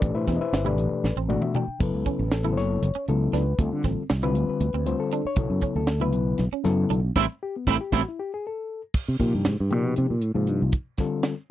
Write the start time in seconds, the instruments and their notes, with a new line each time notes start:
Already playing: reed electric piano A4 B4 D5
0.01 fretless electric bass A1, reed electric piano B2 E3 A3 D4 G4, kick, closed hi-hat
0.14 fretless electric bass A2, reed electric piano E4 B4 C5 E5
0.27 fretless electric bass E2, clean electric guitar C4, kick, snare, closed hi-hat
0.37 reed electric piano D#5, muted fretless electric bass stroke
0.41 reed electric piano E4 B4 C5 E5
0.53 fretless electric bass G1, snare, closed hi-hat
0.64 reed electric piano B2 E3 A3 D4 G4 A4 B4 D5, clean electric guitar E4
0.78 fretless electric bass A1, closed hi-hat
0.92 muted fretless electric bass stroke
1.04 fretless electric bass A1, snare
1.16 fretless electric bass A1, clean electric guitar C4
1.29 reed electric piano B2 E3 A3 D4 F#4 D5, high tom
1.42 reed electric piano E5, mid tom
1.55 clean electric guitar D4, reed electric piano G5, mid tom
1.68 muted fretless electric bass stroke
1.80 fretless electric bass F#1, reed electric piano C#3 F#3 B3 E4 A4 B4, kick, closed hi-hat, splash
1.94 fretless electric bass C#2
2.06 clean electric guitar C#4, kick, closed hi-hat
2.19 fretless electric bass A1
2.31 reed electric piano A4, snare, closed hi-hat
2.44 reed electric piano C#3 F#3 B3 E4 A4, clean electric guitar E4
2.53 reed electric piano C5
2.57 fretless electric bass F#1, reed electric piano C#5, snare, closed hi-hat
2.83 fretless electric bass F#1, closed hi-hat
2.95 clean electric guitar C#4, muted fretless electric bass stroke
3.08 fretless electric bass C#2, reed electric piano C#3 F#3 B3 E4 A4, closed hi-hat
3.33 fretless electric bass C#2, clean electric guitar D4, reed electric piano B4, snare, closed hi-hat
3.59 fretless electric bass D2, reed electric piano D3 G3 C4 F4 A4, kick, closed hi-hat
3.72 fretless electric bass D3
3.84 fretless electric bass A1, clean electric guitar C4, kick, snare, closed hi-hat
3.98 muted fretless electric bass stroke
4.10 fretless electric bass C2, snare, closed hi-hat
4.23 reed electric piano D3 G3 C4 F4 B4, clean electric guitar E4
4.35 fretless electric bass D2, closed hi-hat
4.48 reed electric piano B4, muted fretless electric bass stroke
4.61 fretless electric bass D2, closed hi-hat
4.74 fretless electric bass D2, clean electric guitar C4
4.86 reed electric piano D3 G3 C4 F4 C5, closed hi-hat
5.00 reed electric piano A4
5.11 clean electric guitar D4, closed hi-hat
5.25 reed electric piano C#5, muted fretless electric bass stroke
5.36 fretless electric bass B1, reed electric piano C#3 F#3 B3 E4 A4, kick, closed hi-hat
5.50 fretless electric bass F#2
5.61 clean electric guitar C#4, muted fretless electric bass stroke, kick, closed hi-hat
5.76 fretless electric bass D2, reed electric piano A4
5.87 snare, closed hi-hat
6.00 reed electric piano C#3 F#3 B3 E4 B4, clean electric guitar E4
6.13 fretless electric bass B1, closed hi-hat
6.38 fretless electric bass B1, snare, closed hi-hat
6.53 clean electric guitar C#4
6.64 fretless electric bass F#2, reed electric piano C#3 F#3 B3 E4 A4, snare, closed hi-hat
6.90 fretless electric bass B1, clean electric guitar D4, closed hi-hat
7.16 fretless electric bass A1, reed electric piano G3 A3 C4, clean electric guitar A3 C4 E4, kick, snare
7.43 reed electric piano G4
7.56 reed electric piano B3
7.67 fretless electric bass A1, reed electric piano G3 A3 C4 E4, clean electric guitar A3 C4 E4, kick, snare
7.80 reed electric piano G4
7.92 fretless electric bass A1, reed electric piano G3 A3 C4 F#4, clean electric guitar A3 C4 E4, kick, snare
8.09 reed electric piano E4
8.19 reed electric piano G4
8.34 reed electric piano G#4
8.47 reed electric piano A4
8.94 kick, crash
9.08 fretless electric bass C3
9.19 fretless electric bass A#2, reed electric piano C3 F3 A#3 D#4 G4, kick, closed hi-hat
9.34 fretless electric bass G2
9.45 fretless electric bass G#2, snare, closed hi-hat
9.60 fretless electric bass G2
9.70 fretless electric bass A#2, reed electric piano C3 F3 A#3 D#4 G4, closed hi-hat
9.86 fretless electric bass B2
9.96 fretless electric bass C3, closed hi-hat
10.10 fretless electric bass A#2
10.22 fretless electric bass A2, closed hi-hat
10.35 fretless electric bass G#2, reed electric piano C3 F3 A#3 D#4 F4
10.47 fretless electric bass G2, closed hi-hat
10.62 fretless electric bass C2
10.72 kick, closed hi-hat
10.98 reed electric piano D3 G3 C4 F4 A4, kick, snare, closed hi-hat
11.23 snare, closed hi-hat